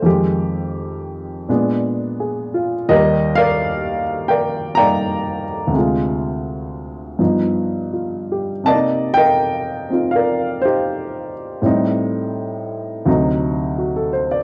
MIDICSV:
0, 0, Header, 1, 2, 480
1, 0, Start_track
1, 0, Tempo, 711744
1, 34, Time_signature, 4, 2, 24, 8
1, 3873, Tempo, 726392
1, 5313, Tempo, 741656
1, 7713, Tempo, 712589
1, 9600, End_track
2, 0, Start_track
2, 0, Title_t, "Grand piano"
2, 0, Program_c, 0, 0
2, 0, Control_c, 0, 64, 127
2, 14, Note_on_c, 0, 41, 57
2, 22, Note_on_c, 0, 51, 51
2, 31, Note_on_c, 0, 56, 48
2, 42, Note_on_c, 0, 67, 65
2, 43, Control_c, 0, 64, 0
2, 144, Control_c, 0, 64, 127
2, 996, Note_off_c, 0, 56, 0
2, 998, Note_off_c, 0, 41, 0
2, 1001, Note_off_c, 0, 51, 0
2, 1002, Note_on_c, 0, 46, 45
2, 1007, Note_on_c, 0, 56, 44
2, 1010, Note_on_c, 0, 59, 43
2, 1011, Note_off_c, 0, 67, 0
2, 1012, Note_on_c, 0, 62, 51
2, 1015, Control_c, 0, 64, 0
2, 1126, Control_c, 0, 64, 127
2, 1485, Note_on_c, 0, 68, 45
2, 1715, Note_on_c, 0, 65, 55
2, 1855, Note_off_c, 0, 68, 0
2, 1948, Note_on_c, 0, 39, 63
2, 1948, Note_on_c, 0, 75, 94
2, 1951, Note_on_c, 0, 51, 57
2, 1954, Note_on_c, 0, 55, 60
2, 1960, Note_off_c, 0, 46, 0
2, 1960, Note_on_c, 0, 67, 68
2, 1960, Note_on_c, 0, 70, 69
2, 1963, Note_off_c, 0, 56, 0
2, 1964, Note_off_c, 0, 59, 0
2, 1966, Note_off_c, 0, 62, 0
2, 1973, Control_c, 0, 64, 0
2, 2051, Note_off_c, 0, 65, 0
2, 2104, Control_c, 0, 64, 127
2, 2262, Note_on_c, 0, 77, 106
2, 2266, Note_off_c, 0, 70, 0
2, 2276, Note_on_c, 0, 74, 76
2, 2277, Note_on_c, 0, 70, 72
2, 2281, Note_off_c, 0, 75, 0
2, 2715, Note_off_c, 0, 77, 0
2, 2881, Note_off_c, 0, 67, 0
2, 2888, Note_on_c, 0, 79, 83
2, 2889, Note_off_c, 0, 70, 0
2, 2892, Note_off_c, 0, 74, 0
2, 2900, Note_on_c, 0, 70, 60
2, 2902, Note_on_c, 0, 74, 60
2, 3203, Note_on_c, 0, 82, 99
2, 3206, Note_off_c, 0, 55, 0
2, 3208, Note_off_c, 0, 74, 0
2, 3208, Note_off_c, 0, 79, 0
2, 3216, Note_on_c, 0, 55, 44
2, 3218, Note_on_c, 0, 74, 72
2, 3219, Note_on_c, 0, 79, 70
2, 3225, Note_on_c, 0, 58, 42
2, 3234, Note_on_c, 0, 63, 50
2, 3672, Note_off_c, 0, 82, 0
2, 3824, Note_on_c, 0, 38, 48
2, 3842, Note_off_c, 0, 74, 0
2, 3843, Note_off_c, 0, 70, 0
2, 3843, Note_off_c, 0, 79, 0
2, 3854, Note_on_c, 0, 48, 43
2, 3867, Note_off_c, 0, 39, 0
2, 3868, Note_off_c, 0, 55, 0
2, 3869, Note_off_c, 0, 51, 0
2, 3873, Note_off_c, 0, 58, 0
2, 3877, Note_off_c, 0, 63, 0
2, 3877, Note_on_c, 0, 56, 47
2, 3882, Control_c, 0, 64, 0
2, 3902, Note_on_c, 0, 65, 52
2, 3995, Control_c, 0, 64, 127
2, 4806, Note_off_c, 0, 38, 0
2, 4821, Note_off_c, 0, 48, 0
2, 4827, Note_on_c, 0, 43, 46
2, 4832, Note_off_c, 0, 56, 0
2, 4832, Note_on_c, 0, 59, 38
2, 4833, Note_on_c, 0, 53, 38
2, 4840, Control_c, 0, 64, 0
2, 4840, Note_on_c, 0, 63, 48
2, 4844, Note_off_c, 0, 65, 0
2, 4942, Control_c, 0, 64, 127
2, 5320, Note_on_c, 0, 65, 35
2, 5569, Note_on_c, 0, 67, 41
2, 5694, Note_off_c, 0, 65, 0
2, 5776, Note_on_c, 0, 48, 46
2, 5790, Note_on_c, 0, 81, 92
2, 5797, Note_off_c, 0, 43, 0
2, 5798, Note_on_c, 0, 75, 65
2, 5799, Note_on_c, 0, 58, 41
2, 5800, Note_off_c, 0, 53, 0
2, 5800, Note_off_c, 0, 59, 0
2, 5802, Note_on_c, 0, 74, 64
2, 5803, Note_off_c, 0, 63, 0
2, 5809, Control_c, 0, 64, 0
2, 5846, Note_on_c, 0, 63, 52
2, 5864, Note_off_c, 0, 81, 0
2, 5904, Note_off_c, 0, 67, 0
2, 5911, Control_c, 0, 64, 127
2, 6100, Note_on_c, 0, 79, 102
2, 6114, Note_off_c, 0, 75, 0
2, 6122, Note_on_c, 0, 70, 64
2, 6124, Note_on_c, 0, 75, 68
2, 6594, Note_on_c, 0, 60, 42
2, 6596, Note_off_c, 0, 63, 0
2, 6606, Note_on_c, 0, 63, 36
2, 6614, Note_on_c, 0, 65, 50
2, 6719, Note_off_c, 0, 79, 0
2, 6730, Note_on_c, 0, 77, 80
2, 6732, Note_off_c, 0, 74, 0
2, 6749, Note_off_c, 0, 70, 0
2, 6759, Note_on_c, 0, 70, 59
2, 6760, Note_on_c, 0, 74, 57
2, 6805, Note_off_c, 0, 77, 0
2, 7050, Note_off_c, 0, 75, 0
2, 7057, Note_on_c, 0, 72, 74
2, 7071, Note_off_c, 0, 63, 0
2, 7081, Note_on_c, 0, 63, 52
2, 7081, Note_on_c, 0, 67, 54
2, 7522, Note_off_c, 0, 72, 0
2, 7690, Note_off_c, 0, 70, 0
2, 7691, Note_off_c, 0, 74, 0
2, 7692, Note_off_c, 0, 63, 0
2, 7692, Note_off_c, 0, 67, 0
2, 7704, Note_off_c, 0, 48, 0
2, 7705, Note_on_c, 0, 45, 55
2, 7713, Note_off_c, 0, 60, 0
2, 7713, Note_on_c, 0, 55, 48
2, 7715, Note_off_c, 0, 58, 0
2, 7723, Note_off_c, 0, 65, 0
2, 7723, Control_c, 0, 64, 0
2, 7724, Note_on_c, 0, 60, 51
2, 7733, Note_on_c, 0, 63, 63
2, 7843, Control_c, 0, 64, 127
2, 8674, Note_on_c, 0, 38, 57
2, 8677, Note_off_c, 0, 45, 0
2, 8677, Note_on_c, 0, 48, 49
2, 8678, Note_off_c, 0, 63, 0
2, 8678, Note_on_c, 0, 54, 47
2, 8681, Note_off_c, 0, 55, 0
2, 8687, Note_off_c, 0, 60, 0
2, 8688, Note_on_c, 0, 63, 60
2, 8692, Control_c, 0, 64, 0
2, 8827, Control_c, 0, 64, 127
2, 9161, Note_on_c, 0, 66, 42
2, 9283, Note_on_c, 0, 69, 53
2, 9382, Note_off_c, 0, 66, 0
2, 9396, Note_on_c, 0, 72, 56
2, 9483, Note_off_c, 0, 69, 0
2, 9521, Note_on_c, 0, 74, 58
2, 9544, Note_off_c, 0, 72, 0
2, 9600, Note_off_c, 0, 38, 0
2, 9600, Note_off_c, 0, 48, 0
2, 9600, Note_off_c, 0, 54, 0
2, 9600, Note_off_c, 0, 63, 0
2, 9600, Note_off_c, 0, 74, 0
2, 9600, End_track
0, 0, End_of_file